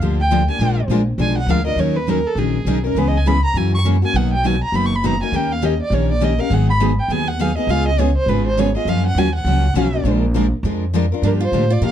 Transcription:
0.00 upright bass D2, steel-string acoustic guitar D3 F3 A#3 D4 G4
0.21 violin G5
0.31 steel-string acoustic guitar D3 F3 A#3 D4 G4
0.48 steel-string acoustic guitar A#3 D4 G4, violin G#5
0.59 upright bass A#1, steel-string acoustic guitar F3 G#3 D4 F4 A#4
0.88 upright bass A#1, steel-string acoustic guitar F3 G#3 D4 F4 A#4
1.18 upright bass B1, steel-string acoustic guitar F3 G#3 D4 F4 A#4, violin G#5
1.38 violin F#5
1.47 upright bass D2, steel-string acoustic guitar F3 G#3 D4 F4 A#4, violin F5
1.65 steel-string acoustic guitar D4 F4 A#4, violin D#5
1.76 upright bass D#2, steel-string acoustic guitar D#3 F#3 C#4 D#4 A#4
1.80 violin C#5
1.96 violin B4
2.08 steel-string acoustic guitar D#3 F#3 C#4 D#4 A#4, violin A#4
2.27 violin A4
2.35 upright bass A#1, steel-string acoustic guitar D#3 F#3 C#4 D#4 A#4, violin G#4
2.65 upright bass B1, steel-string acoustic guitar D#3 F#3 C#4 D#4 A#4
2.84 steel-string acoustic guitar C#4 D#4 A#4, violin A#4
2.95 upright bass C#2, steel-string acoustic guitar C#3 E3 G#3 B3 C#4 E4 G#4, violin B4
3.08 violin D#5
3.17 violin G#5
3.26 steel-string acoustic guitar C#3 E3 G#3 B3 C#4 E4 G#4, violin B5
3.45 violin A#5
3.54 upright bass F#2, steel-string acoustic guitar C#3 E3 F#3 A#3 C#4 E4 F#4 A#4, violin G#5
3.75 violin C#6
3.84 steel-string acoustic guitar C#3 E3 F#3 A#3 C#4 E4 F#4 A#4
4.02 steel-string acoustic guitar A#3 C#4 F#4, violin G#5
4.14 upright bass B1, steel-string acoustic guitar B2 D#3 F#3 A#3 B3 D#4 F#4 A#4, violin F#5
4.33 violin G5
4.44 steel-string acoustic guitar B2 D#3 F#3 A#3 B3 D#4 F#4 A#4, violin G#5
4.63 violin A#5
4.72 upright bass F#1, steel-string acoustic guitar B2 D#3 F#3 A#3 B3 D#4 F#4 A#4, violin B5
4.86 violin C#6
4.96 violin B5
5.03 steel-string acoustic guitar B2 D#3 F#3 A#3 B3 D#4 F#4 A#4, violin A#5
5.21 steel-string acoustic guitar A#3 D#4 F#4, violin G#5
5.32 upright bass D#2, steel-string acoustic guitar D#3 A#3 C#4 G4 A#4
5.36 violin G5
5.52 violin F5
5.62 steel-string acoustic guitar D#3 A#3 C#4 G4 A#4, violin D#5
5.82 violin D5
5.90 upright bass A#1, steel-string acoustic guitar D#3 A#3 C#4 G4 A#4
5.94 violin C#5
6.12 violin D5
6.21 steel-string acoustic guitar D#3 A#3 C#4 G4 A#4, violin D#5
6.38 steel-string acoustic guitar C#4 G4 A#4, violin F5
6.50 upright bass G#1, steel-string acoustic guitar D#3 F#3 B3 D#4 G#4, violin F#5
6.70 violin B5
6.80 steel-string acoustic guitar D#3 F#3 B3 D#4 G#4
6.99 violin G5
7.08 upright bass D#2, steel-string acoustic guitar D#3 F#3 B3 D#4 G#4, violin G#5
7.28 violin F#5
7.39 steel-string acoustic guitar D#3 F#3 B3 D#4 G#4, violin F5
7.56 steel-string acoustic guitar B3 D#4 G#4, violin D#5
7.67 upright bass C#2, steel-string acoustic guitar C#3 G#3 B3 F4 G#4, violin F5
7.88 violin D#5
7.98 steel-string acoustic guitar C#3 G#3 B3 F4 G#4, violin C#5
8.17 violin C5
8.26 upright bass G#1, steel-string acoustic guitar C#3 G#3 B3 F4 G#4, violin B4
8.47 violin C5
8.57 steel-string acoustic guitar C#3 G#3 B3 F4 G#4, violin C#5
8.75 steel-string acoustic guitar B3 F4 G#4, violin D#5
8.85 upright bass F#2, steel-string acoustic guitar C#3 F3 F#3 A#3 C#4 F4 F#4 A#4, violin F5
9.06 violin F#5
9.15 upright bass D#2, steel-string acoustic guitar C#3 F3 F#3 A#3 C#4 F4 F#4 A#4, violin G#5
9.35 violin F#5
9.44 upright bass C#2, steel-string acoustic guitar C#3 F3 F#3 A#3 C#4 F4 F#4 A#4
9.74 upright bass B1, steel-string acoustic guitar C#3 F3 F#3 A#3 C#4 F4 F#4 A#4
9.93 steel-string acoustic guitar A#3 C#4 F#4
10.04 upright bass A#1, steel-string acoustic guitar F3 G#3 D4 F4 A#4
10.34 steel-string acoustic guitar F3 G#3 D4 F4 A#4
10.63 upright bass F2, steel-string acoustic guitar F3 G#3 D4 F4 A#4
10.94 steel-string acoustic guitar F3 G#3 D4 F4 A#4
11.12 steel-string acoustic guitar D4 F4 A#4
11.22 upright bass G2, steel-string acoustic guitar D3 F3 A#3 D4 G4, violin A#4
11.40 steel-string acoustic guitar F4, violin C5
11.52 upright bass A2, steel-string acoustic guitar D3 F3 A#3 D4 G4
11.70 steel-string acoustic guitar F4, violin D5
11.81 upright bass A#2, steel-string acoustic guitar D3 F3 A#3 D4 G4 A#4
11.85 violin F5

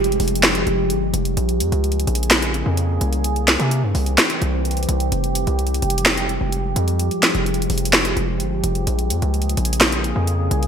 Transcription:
Already playing: 808-style bass F1, ambient pad F3 G#3 G4
0.04 closed hi-hat
0.12 closed hi-hat
0.20 808-style bass F1, closed hi-hat, open hi-hat
0.28 closed hi-hat
0.35 closed hi-hat
0.43 snare, clap, closed hi-hat
0.55 closed hi-hat
0.67 808-style bass F1, closed hi-hat
0.90 808-style bass G1, closed hi-hat
1.14 808-style bass F1, closed hi-hat
1.25 closed hi-hat
1.37 808-style bass A#1, ambient pad C#3 A#3 G#4, closed hi-hat
1.49 closed hi-hat
1.60 808-style bass F2, closed hi-hat
1.72 808-style bass C#2, closed hi-hat
1.84 closed hi-hat
1.92 closed hi-hat
2.00 closed hi-hat
2.07 808-style bass A#1, closed hi-hat
2.15 closed hi-hat
2.23 closed hi-hat
2.31 snare, clap, closed hi-hat
2.42 closed hi-hat
2.54 closed hi-hat
2.66 808-style bass F2
2.77 closed hi-hat
3.01 808-style bass C2, closed hi-hat
3.13 closed hi-hat
3.24 ambient pad E3 C4 G4, closed hi-hat
3.36 closed hi-hat
3.48 snare, clap, closed hi-hat
3.60 808-style bass C3, closed hi-hat
3.71 closed hi-hat
3.83 808-style bass G2
3.95 808-style bass C2, open hi-hat
4.06 closed hi-hat
4.18 snare, clap, closed hi-hat
4.30 closed hi-hat
4.42 808-style bass C2, closed hi-hat
4.65 closed hi-hat
4.71 closed hi-hat
4.77 closed hi-hat
4.83 closed hi-hat
4.89 808-style bass C2, closed hi-hat
5.00 closed hi-hat
5.12 808-style bass F1, ambient pad F3 G#3, closed hi-hat
5.24 closed hi-hat
5.35 closed hi-hat
5.47 808-style bass C2, closed hi-hat
5.59 closed hi-hat
5.67 closed hi-hat
5.74 closed hi-hat
5.82 808-style bass F1, closed hi-hat
5.90 closed hi-hat
5.98 closed hi-hat
6.06 snare, clap, closed hi-hat
6.17 closed hi-hat
6.29 closed hi-hat
6.41 808-style bass F1
6.52 closed hi-hat
6.76 808-style bass F2, closed hi-hat
6.88 closed hi-hat
6.99 closed hi-hat
7.11 closed hi-hat
7.23 snare, clap, closed hi-hat
7.35 808-style bass F1, closed hi-hat
7.46 closed hi-hat
7.54 closed hi-hat
7.62 closed hi-hat
7.70 808-style bass F1, closed hi-hat, open hi-hat
7.78 closed hi-hat
7.85 closed hi-hat
7.93 snare, clap, closed hi-hat
8.05 closed hi-hat
8.17 808-style bass F1, closed hi-hat
8.40 808-style bass G1, closed hi-hat
8.64 808-style bass F1, closed hi-hat
8.75 closed hi-hat
8.87 808-style bass A#1, ambient pad C#3 A#3 G#4, closed hi-hat
8.99 closed hi-hat
9.10 808-style bass F2, closed hi-hat
9.22 808-style bass C#2, closed hi-hat
9.34 closed hi-hat
9.42 closed hi-hat
9.49 closed hi-hat
9.57 808-style bass A#1, closed hi-hat
9.65 closed hi-hat
9.73 closed hi-hat
9.81 snare, clap, closed hi-hat
9.92 closed hi-hat
10.04 closed hi-hat
10.16 808-style bass F2
10.27 closed hi-hat
10.51 808-style bass C2, closed hi-hat
10.63 closed hi-hat

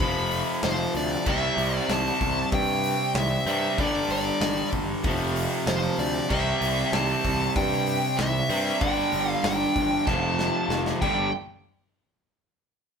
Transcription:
Already playing: lead electric guitar B5
0.00 picked electric bass F1, overdriven electric guitar F2 C3 F3, kick, open hi-hat
0.31 open hi-hat
0.63 picked electric bass F1, lead electric guitar C5, snare, open hi-hat
0.95 picked electric bass D2, lead electric guitar D5, open hi-hat
1.26 picked electric bass C2, overdriven electric guitar C3 G3 C4, lead electric guitar E5, kick, crash
1.57 picked electric bass C2, open hi-hat
1.77 lead electric guitar D5
1.89 picked electric bass C2, lead electric guitar A5, snare, open hi-hat
2.21 picked electric bass C2, kick, open hi-hat
2.52 picked electric bass G2, lead electric guitar G5, kick, open hi-hat
2.84 open hi-hat
3.15 picked electric bass C2, lead electric guitar E5, snare, open hi-hat
3.46 picked electric bass G2, overdriven electric guitar G3 C4, lead electric guitar E5, open hi-hat
3.50 overdriven electric guitar C3
3.78 picked electric bass G1, overdriven electric guitar G2 D3 G3, lead electric guitar D5, kick, open hi-hat
4.09 picked electric bass G1, lead electric guitar D5, open hi-hat
4.41 picked electric bass G1, snare, open hi-hat
4.72 picked electric bass G1, kick, open hi-hat
5.03 picked electric bass F1, overdriven electric guitar F2 C3 F3, kick, open hi-hat
5.36 open hi-hat
5.66 picked electric bass F1, lead electric guitar C5, snare, open hi-hat
5.98 picked electric bass D2, lead electric guitar D5, open hi-hat
6.29 picked electric bass C2, overdriven electric guitar C3 G3 C4, lead electric guitar E5, kick, crash
6.61 picked electric bass C2, open hi-hat
6.92 picked electric bass C2, lead electric guitar A5, snare, open hi-hat
7.25 picked electric bass C2, kick, open hi-hat
7.56 picked electric bass G2, lead electric guitar G5, kick, open hi-hat
7.87 open hi-hat
8.18 picked electric bass C2, lead electric guitar E5, snare, open hi-hat
8.50 picked electric bass G2, overdriven electric guitar G3 C4, open hi-hat
8.54 overdriven electric guitar C3
8.80 picked electric bass G1, overdriven electric guitar G2 D3 G3, lead electric guitar G5, kick, open hi-hat
9.12 picked electric bass G1, open hi-hat
9.31 lead electric guitar F5
9.43 picked electric bass G1, lead electric guitar G5, snare, open hi-hat
9.76 picked electric bass G1, kick, open hi-hat
10.06 picked electric bass F1, overdriven electric guitar F2 C3 F3, lead electric guitar A5, kick, snare
10.39 snare
10.69 picked electric bass F1, snare
10.86 snare
11.01 picked electric bass G1, overdriven electric guitar G2 D3 G3, lead electric guitar G5, kick, crash

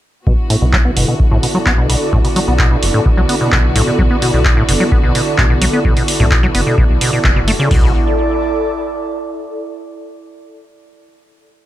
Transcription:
0.27 analog synth bass B1, acid bass B2, string section D3 B3 F#4, analog synth pad E4, kick
0.50 acid bass A2, open hi-hat
0.62 analog synth bass B1, acid bass B2
0.73 acid bass F#3, kick, clap
0.85 acid bass B3, analog synth pad A4
0.97 analog synth bass F#1, acid bass B2, open hi-hat
1.08 acid bass B2
1.20 kick
1.31 analog synth bass B1, acid bass A2, analog synth pad D5
1.43 acid bass B2, open hi-hat
1.55 acid bass F#3
1.66 analog synth bass B1, acid bass B3, kick, clap
1.78 acid bass B2
1.89 acid bass B2, open hi-hat
2.13 analog synth bass B1, acid bass A2, kick
2.24 acid bass B2, open hi-hat
2.36 acid bass F#3, open hi-hat
2.48 analog synth bass B1, acid bass B3
2.59 acid bass B2, kick, clap
2.71 acid bass B2
2.83 analog synth bass F#1, open hi-hat
2.94 acid bass A2
3.06 acid bass B2, kick
3.17 analog synth bass B1, acid bass F#3
3.29 acid bass B3, open hi-hat
3.41 acid bass B2
3.52 analog synth bass B1, acid bass B2, kick, clap
3.76 acid bass A2, open hi-hat
3.87 acid bass B2
3.99 analog synth bass B1, acid bass F#3, kick
4.11 acid bass B3
4.22 acid bass B2, open hi-hat
4.34 analog synth bass B1, acid bass B2
4.45 kick, clap
4.57 acid bass A2
4.69 analog synth bass F#1, acid bass B2, open hi-hat
4.80 acid bass F#3
4.92 acid bass B3, kick
5.03 analog synth bass B1, acid bass B2
5.15 acid bass B2, open hi-hat
5.38 analog synth bass B1, acid bass A2, kick, clap
5.50 acid bass B2
5.62 acid bass F#3, open hi-hat
5.73 acid bass B3
5.85 analog synth bass B1, acid bass B2, kick
5.97 acid bass B2, open hi-hat
6.08 open hi-hat
6.20 analog synth bass B1, acid bass A2
6.31 acid bass B2, kick, clap
6.43 acid bass F#3
6.55 analog synth bass F#1, acid bass B3, open hi-hat
6.67 acid bass B2
6.78 acid bass B2, kick
6.90 analog synth bass B1
7.01 acid bass B2, open hi-hat
7.13 acid bass B2
7.24 analog synth bass F#1, acid bass B2, kick, clap
7.36 acid bass B2
7.48 acid bass A3, open hi-hat
7.59 acid bass C#3
7.71 analog synth bass B1, acid bass B2, string section D3 B3 F#4, analog synth pad E4, kick, floor tom, open hi-hat
7.78 analog synth pad A4
7.85 analog synth pad D5

